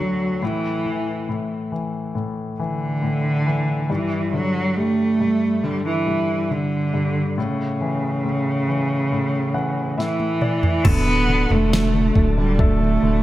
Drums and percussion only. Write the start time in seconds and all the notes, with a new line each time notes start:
10.00 snare
10.20 high tom
10.41 mid tom
10.63 floor tom
10.85 kick, floor tom, crash
11.50 floor tom
11.73 snare
12.15 kick, floor tom
12.59 kick, floor tom